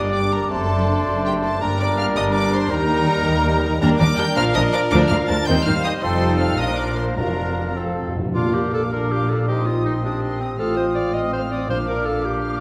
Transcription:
Already playing: G1 G2 G3 D4 A#4 D5 D#5 D6
0.13 A#3 G4 D5 D6
0.31 D4 A#4 A#5
0.50 F#1 F#2 A3 C4 D4 A4 C5 D5 A5 C6
0.71 D4 F#4
0.89 C4 A4
1.07 F#1 F#2 D4 F#4
1.25 C4 G4 A4 G5
1.43 D4 F#4 A4 A5
1.61 G1 G2 G3 A#3 D4 G4 A#4 D5 A#5
1.80 D4 A#4 D5 D6
1.98 A#3 G4 F5 F6
2.16 G1 G2 D4 A#4 D#5 D#6
2.34 A#3 G4 D5 D6
2.53 D4 A#4 C5 C6
2.70 D#2 G3 A#3 D#4 G4 A#4 A#5
2.89 D#4 A#4
3.07 A#3 G4
3.26 D#2 D#4 A#4
3.45 A#3 G4
3.63 D#4 A#4
3.81 D#2 G3 A#3 D4 A#4 A#5
3.99 D#2 G3 D4 D#4 A#4 D5 A#5 D6
4.17 D#2 G3 D4 D#4 G4 A#4 G5 A#5 G6
4.35 A#1 A#2 F3 D4 A#4 F5 A#5 F6
4.54 A#1 A#2 F3 A#3 D4 F4 A#4 D#5 A#5 D#6
4.72 F3 D4 A#4 D5 A#5 D6
4.91 D2 F3 D4 A#4 D5 A#5 D6
5.09 D2 F3 A#3 D4 F4 A#4 F5 A#5 F6
5.28 D2 F3 D4 A#4 A5 A#5 A6
5.46 D#2 D#3 G3 C4 D#4 C5 G5 G6
5.65 D#2 D#3 G3 D#4 C5 F5 G5 F6
5.84 D#3 D#4 C5 D#5 G5 D#6
6.01 F1 F2 F3 G3 D#4 G4 A4 C5 G5 C6
6.40 F5 F6
6.58 A#1 A#2 F3 D4 A#4 D#5 F5 D#6
6.78 D5 D6
6.97 C5 C6
7.17 F1 F2 F3 D4 A#4 F5 A#5
7.76 F2 F3 C4 A4 F5
7.85 F2
7.92 F2
8.00 F2
8.08 F2
8.16 F2
8.24 F2
8.34 A#1 A#2 A#3 D4 F4 F5 D6
8.54 D4 G4 D5 A#5
8.73 F4 A4 F5 D6
8.92 D4 A#4 D5 F5 A#5 D6
9.12 F4 G4 F5 D6
9.29 D4 A4 D5 A#5
9.48 A#3 C4 D#4 G4 D#5 C6 D#6
9.66 C4 F4 C5 D#6
9.85 A#3 D#4 D#5 C6
10.03 C4 D4 G4 C5 D#6
10.22 A#3 D#5 C6
10.40 C4 C5 D#6
10.59 A1 A2 A3 C4 F4 A4 F5 D#6 F6
10.77 C4 C5 D#5 D#6
10.95 A3 D5 F5 F6
11.14 C4 D#5 F5 D#6
11.32 A3 C5 F5 F6
11.51 C4 D5 D#5 D#6
11.69 A#1 A#2 A#3 D4 F4 C5 F5 D6 F6
11.87 D4 A#4 D5 D6
12.04 F4 A4 F5 F6
12.23 D4 G4 D5 D6
12.41 F4 F5 F6

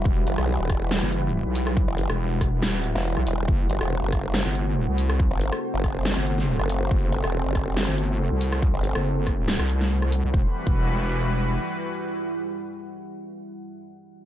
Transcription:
Already playing: E3 G3 E4 F#4 B4 F#5
0.05 E1, kick
0.27 F#1, closed hi-hat
0.38 B1, cross-stick
0.59 E1
0.70 kick, cross-stick, closed hi-hat
0.91 snare
1.02 F#1
1.12 closed hi-hat
1.45 B1
1.55 open hi-hat
1.67 cross-stick
1.77 kick
1.88 F#1
1.98 closed hi-hat
2.10 E1, cross-stick
2.41 kick, cross-stick, open hi-hat
2.62 snare, closed hi-hat
2.69 D#1
2.84 closed hi-hat
2.95 E1, snare
3.17 B1, cross-stick
3.27 E1, open hi-hat
3.48 F#1 C3 A3 C4 F#4 C5, kick
3.70 G1 A4, closed hi-hat
3.81 E1, cross-stick
4.02 F#1
4.12 kick, cross-stick, closed hi-hat
4.34 snare
4.45 G1
4.55 closed hi-hat
4.88 C2
4.98 open hi-hat
5.10 cross-stick
5.20 kick
5.31 G1
5.41 closed hi-hat
5.52 cross-stick
5.74 F#1
5.84 kick, cross-stick, closed hi-hat
6.05 snare
6.17 G1
6.27 closed hi-hat
6.38 snare
6.59 F#1, cross-stick
6.70 open hi-hat
6.91 F#1, kick
7.12 G1, closed hi-hat
7.24 E1, cross-stick
7.45 F#1
7.55 kick, cross-stick, closed hi-hat
7.77 snare
7.88 G1
7.98 closed hi-hat
8.31 C2
8.41 open hi-hat
8.52 cross-stick
8.62 kick
8.74 G1
8.84 closed hi-hat
8.95 F#1, cross-stick
9.27 kick, cross-stick, open hi-hat
9.48 snare, closed hi-hat
9.59 C2, cross-stick
9.69 closed hi-hat
9.81 snare
10.02 cross-stick
10.12 open hi-hat
10.24 C2
10.34 E1 E3 G3 E4 F#4 B4, kick
10.41 G3
10.47 F#5
10.67 E1, kick

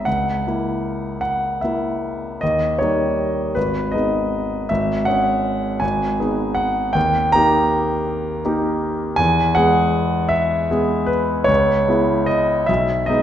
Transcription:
0.05 C#2 F#5
0.47 A#3 E4
1.21 F#5
1.61 A#3 E4 E5
2.41 D#2 D#5
2.79 G3 A#3 D#4 C#5
3.55 G#1 B4
3.92 G#3 B3 D#4 D#5
4.69 G#1 E5
5.05 G#3 C#4 G#4 F#5
5.80 G#1 G#5
6.19 B3 D#4 G#4
6.55 F#5
6.93 D#2 G5
7.32 A#3 D#4 G4 A#5
8.45 A#3 D#4 G4
9.16 E2 G#5
9.55 G#3 B3 G#4 F#5
10.29 E5
10.71 G#3 B3 G#4
11.06 B4
11.44 C#2 C#5
11.88 G#3 B3 E4
12.26 D#5
12.66 B1 E5
13.06 G#3 B3 D#4 D#5

